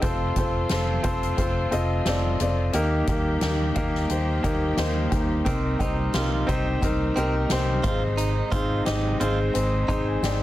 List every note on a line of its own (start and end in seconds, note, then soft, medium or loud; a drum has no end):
0.00 0.30 F1 loud
0.00 2.71 C3 medium
0.00 2.72 F3 medium
0.00 2.72 A3 medium
0.00 0.34 C4 medium
0.00 0.34 F4 medium
0.00 2.72 F4 medium
0.00 0.21 G4 soft
0.00 0.34 A4 medium
0.00 0.35 C5 medium
0.00 0.20 D#5 medium
0.00 kick medium
0.00 closed hi-hat medium
0.36 0.64 F1 medium
0.36 0.68 C4 medium
0.36 0.68 F4 medium
0.36 0.69 A4 medium
0.36 0.69 C5 medium
0.36 kick medium
0.36 closed hi-hat medium
0.69 0.98 F1 medium
0.69 1.02 C4 medium
0.69 1.02 F4 medium
0.69 1.02 A4 medium
0.69 1.03 C5 medium
0.69 snare medium
0.69 closed hi-hat medium
1.03 1.32 F1 medium
1.03 1.35 C4 loud
1.03 1.35 F4 medium
1.03 1.36 A4 medium
1.03 1.36 C5 loud
1.03 kick medium
1.03 closed hi-hat medium
1.23 closed hi-hat soft
1.37 1.66 F1 medium
1.37 1.69 C4 medium
1.37 1.70 F4 medium
1.37 1.70 A4 medium
1.37 1.70 C5 medium
1.37 kick medium
1.37 closed hi-hat medium
1.71 2.00 F1 medium
1.71 2.03 C4 medium
1.71 2.04 F4 medium
1.71 2.04 A4 medium
1.71 2.04 D#5 loud
1.71 closed hi-hat soft
2.05 2.34 F1 medium
2.05 2.38 C4 medium
2.05 2.38 F4 medium
2.05 2.39 A4 medium
2.05 2.39 D5 medium
2.05 snare medium
2.05 closed hi-hat medium
2.40 2.68 F1 medium
2.40 2.72 C4 medium
2.40 2.72 F4 medium
2.40 2.72 A4 medium
2.40 2.73 D5 medium
2.40 closed hi-hat medium
2.73 3.02 D#2 medium
2.73 5.44 D#3 medium
2.73 3.73 D#3 medium
2.73 7.80 G3 medium
2.73 3.05 A#3 medium
2.73 7.81 A#3 medium
2.73 3.06 D#4 medium
2.73 5.44 G4 medium
2.73 3.06 G4 medium
2.73 3.06 A#4 loud
2.73 closed hi-hat medium
3.07 3.36 D#2 medium
3.07 3.40 A#3 medium
3.07 3.40 D#4 medium
3.07 3.40 G4 medium
3.07 3.41 A#4 medium
3.07 kick medium
3.07 closed hi-hat medium
3.41 3.70 D#2 medium
3.41 3.73 A#3 medium
3.41 3.74 D#4 medium
3.41 3.74 G4 medium
3.41 3.74 A#4 medium
3.41 snare loud
3.41 closed hi-hat medium
3.75 4.04 D#2 medium
3.75 4.08 A#3 medium
3.75 4.08 D#4 medium
3.75 4.08 G4 medium
3.75 4.08 A#4 loud
3.75 kick medium
3.75 closed hi-hat medium
3.95 snare soft
4.10 4.38 D#2 loud
4.10 4.41 A#3 medium
4.10 4.42 D#4 medium
4.10 4.42 G4 medium
4.10 4.42 C5 medium
4.10 closed hi-hat medium
4.43 4.72 D#2 medium
4.43 4.75 A#3 medium
4.43 4.76 D#4 medium
4.43 4.76 G4 medium
4.43 4.76 A#4 medium
4.43 kick medium
4.43 closed hi-hat soft
4.77 5.06 D#2 medium
4.77 5.09 A#3 medium
4.77 5.09 D#4 medium
4.77 5.10 G4 medium
4.77 5.10 C5 medium
4.77 5.10 D#5 medium
4.77 snare medium
4.77 closed hi-hat medium
5.11 5.40 D#2 medium
5.11 5.43 A#3 medium
5.11 5.44 D#4 medium
5.11 5.44 G4 medium
5.11 5.44 A#4 medium
5.11 5.44 G5 medium
5.11 kick medium
5.11 closed hi-hat medium
5.45 5.75 C2 medium
5.45 6.44 C3 medium
5.45 10.43 C3 medium
5.45 5.77 C4 medium
5.45 5.79 C4 medium
5.45 5.78 D#4 medium
5.45 10.43 D#4 medium
5.45 5.78 G4 medium
5.45 5.78 A#4 loud
5.45 kick medium
5.45 closed hi-hat medium
5.79 6.08 C2 medium
5.79 6.11 C4 medium
5.79 6.12 D#4 medium
5.79 6.13 D#4 medium
5.79 6.12 G4 medium
5.79 6.12 C5 medium
5.79 kick medium
5.79 closed hi-hat medium
6.14 6.43 C2 medium
6.14 6.45 C4 medium
6.14 6.46 D#4 medium
6.14 6.47 F4 medium
6.14 6.47 G4 medium
6.14 6.47 A#4 medium
6.14 snare loud
6.14 closed hi-hat medium
6.47 6.77 C2 medium
6.47 6.79 C4 loud
6.47 6.80 D#4 medium
6.47 6.67 D#4 medium
6.47 6.80 G4 medium
6.47 6.80 C5 loud
6.47 kick medium
6.47 closed hi-hat medium
6.82 7.11 C2 medium
6.82 7.14 C4 medium
6.82 7.14 D#4 medium
6.82 7.14 G4 medium
6.82 7.15 A#4 medium
6.82 kick medium
6.82 closed hi-hat medium
7.16 7.45 C2 medium
7.16 7.34 C4 medium
7.16 7.48 C4 medium
7.16 7.48 D#4 medium
7.16 7.49 G4 medium
7.16 7.49 A#4 loud
7.16 closed hi-hat soft
7.49 7.79 C2 medium
7.49 7.82 C4 medium
7.49 7.82 D#4 medium
7.49 7.83 G4 medium
7.49 7.83 C5 medium
7.49 snare medium
7.49 closed hi-hat medium
7.83 8.40 G#1 medium
7.83 8.83 G#2 medium
7.83 10.43 D#3 medium
7.83 10.43 G#3 medium
7.83 8.47 C4 medium
7.83 8.48 D#4 medium
7.83 8.02 F4 medium
7.83 8.48 G#4 medium
7.83 8.48 C5 medium
7.83 kick loud
7.83 closed hi-hat medium
8.17 8.50 D#4 medium
8.17 closed hi-hat medium
8.51 8.80 G#1 medium
8.51 8.83 C4 medium
8.51 8.84 D#4 medium
8.51 8.85 F4 medium
8.51 8.84 G#4 medium
8.51 8.84 C5 medium
8.51 kick medium
8.51 closed hi-hat medium
8.85 9.15 G#1 medium
8.85 9.18 G#3 medium
8.85 9.17 C4 medium
8.85 9.18 D#4 medium
8.85 9.19 G4 medium
8.85 9.18 D#5 medium
8.85 snare loud
8.85 closed hi-hat medium
9.20 9.49 G#1 medium
9.20 9.52 C4 loud
9.20 9.52 D#4 medium
9.20 9.39 F4 medium
9.20 9.53 G#4 medium
9.20 9.53 C5 loud
9.20 closed hi-hat medium
9.54 9.83 G#1 loud
9.54 9.86 C4 medium
9.54 9.86 D#4 medium
9.54 9.86 G#4 medium
9.54 9.87 C5 medium
9.54 closed hi-hat medium
9.88 10.17 G#1 medium
9.88 10.20 C4 medium
9.88 10.20 D#4 medium
9.88 10.07 D#4 medium
9.88 10.20 G#4 medium
9.88 10.21 C5 loud
9.88 10.06 C6 medium
9.88 kick medium
9.88 closed hi-hat soft
10.08 10.22 G#5 medium
10.22 10.43 G#1 medium
10.22 10.43 C4 medium
10.22 10.43 D#4 medium
10.22 10.43 G#4 medium
10.22 10.43 D5 medium
10.22 10.41 G5 medium
10.22 snare medium
10.22 closed hi-hat medium